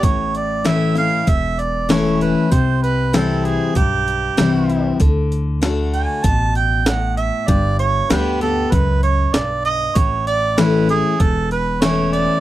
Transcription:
<<
  \new Staff \with { instrumentName = "Harmonica" } { \time 4/4 \key a \mixolydian \tempo 4 = 97 cis''8 d''8 e''8 f''8 e''8 d''8 cis''8 b'8 | c''8 b'8 a'8 gis'8 g'2 | r4. gis''8 a''8 g''8 fis''8 e''8 | d''8 cis''8 b'8 a'8 b'8 cis''8 d''8 ees''8 |
cis''8 d''8 b'8 gis'8 a'8 b'8 cis''8 d''8 | }
  \new Staff \with { instrumentName = "Steel-string acoustic guitar" } { \time 4/4 \key a \mixolydian << { r4 <e a cis' e'>8 <cis' e'>8 r4 <e a cis' e'>4 | r4 <e g c' e'>4 r4 <e g c' e'>4 | r4 <d a d' fis'>4 r2 | r4 <d g b g'>8 <b g'>8 r2 |
r4 <e a cis' e'>8 <cis' e'>8 r4 <e a cis' e'>4 | } \\ { a,2 e,2 | c2 g,2 | d2 b,4 a,4 | g,2 fis,4 g,4 |
a,2 e,2 | } >> }
  \new Staff \with { instrumentName = "Upright bass" } { \clef bass \time 4/4 \key a \mixolydian a,,2 e,,2 | c,2 b,,4 c,4 | d,2 a,,2 | g,,4 d,4 cis,4 b,,4 |
a,,2 e,,2 | }
  \new DrumStaff \with { instrumentName = "Drums" } \drummode { \time 4/4 <hh bd>8 hh8 <hh sn>8 hh8 <hh bd>8 hh8 <hh sn>8 hh8 | <hh bd>8 hh8 <hh sn>8 hh8 <hh bd>8 hh8 <hh sn>8 hh8 | <hh bd>8 hh8 <hh sn>8 hh8 <hh bd>8 hh8 <hh sn>8 hh8 | <hh bd>8 hh8 <hh sn>8 hh8 <hh bd>8 hh8 <hh sn>8 hh8 |
<hh bd>8 hh8 <hh sn>8 hh8 <hh bd>8 hh8 <hh sn>8 hh8 | }
>>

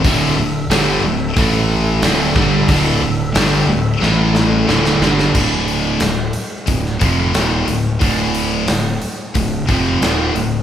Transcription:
<<
  \new Staff \with { instrumentName = "Tonewheel organ" } { \time 4/4 \key d \minor \tempo 4 = 90 <d' a' e''>2 <a e'>4 <d' e''>4~ | <d' e''>2 <a e'>4 <d' e''>4 | r1 | r1 | }
  \new Staff \with { instrumentName = "Distorted electric guitar" } { \clef bass \time 4/4 \key d \minor <d, a, d>8 <d, a,>8 <g, d g>8 <d, a,>8 <a, e a>4 <d, a, d>8 <g, d g>8 | <d, a, d>8 <d, a,>8 <g, d g>8 <d, a,>8 <a, e a>4 <d, a, d>8 <g, d g>8 | <d, a, d>4 <d, a,>8 r8 <d, a,>8 <f, c f>8 <ees, bes, ees>8 <d, a,>8 | <d, a, d>4 <d, a,>8 r8 <d, a,>8 <f, c f>8 <ees, bes, ees>8 <d, a,>8 | }
  \new Staff \with { instrumentName = "Overdriven electric guitar" } { \clef bass \time 4/4 \key d \minor <d, a, d>8 <d, a,>8 <g, d g>8 <d, a,>8 <a, e a>4 <d, a, d>8 <g, d g>8 | <d, a, d>8 <d, a,>8 <g, d g>8 <d, a,>8 <a, e a>4 <d, a, d>8 <g, d g>8 | <d, a, d>4 <d, a,>8 r8 <d, a,>8 <f, c f>8 <ees, bes, ees>8 <d, a,>8 | <d, a, d>4 <d, a,>8 r8 <d, a,>8 <f, c f>8 <ees, bes, ees>8 <d, a,>8 | }
  \new Staff \with { instrumentName = "Overdriven electric guitar" } { \clef bass \time 4/4 \key d \minor <d, a, d>8 <d, a,>8 <g, d g>8 <d, a,>8 <a, e a>4 <d, a, d>8 <g, d g>8 | <d, a, d>8 <d, a,>8 <g, d g>8 <d, a,>8 <a, e a>4 <d, a, d>8 <g, d g>8 | r1 | r1 | }
  \new Staff \with { instrumentName = "Fingered electric bass" } { \clef bass \time 4/4 \key d \minor d,,8 d,,8 g,,8 d,,8 a,,4 d,,8 g,,8 | d,,8 d,,8 g,,8 d,,8 a,,4 d,,8 g,,8 | d,,4 d,,8 r8 d,,8 f,,8 ees,,8 d,,8 | d,,4 d,,8 r8 d,,8 f,,8 ees,,8 d,,8 | }
  \new DrumStaff \with { instrumentName = "Drums" } \drummode { \time 4/4 <hho bd>4 <hho sn>4 <hho bd>4 <hho sn>8 <bd sn>8 | <hho bd>4 <hho sn>4 sn8 sn8 sn16 sn16 sn16 sn16 | <cymc bd>8 hho8 <hho sn>8 hho8 <hho bd>16 sn16 <hho bd>8 <hho sn>8 hho8 | <hho bd>8 hho8 <hho sn>8 hho8 <hho bd>8 <hho bd>8 <hho sn>8 hho8 | }
>>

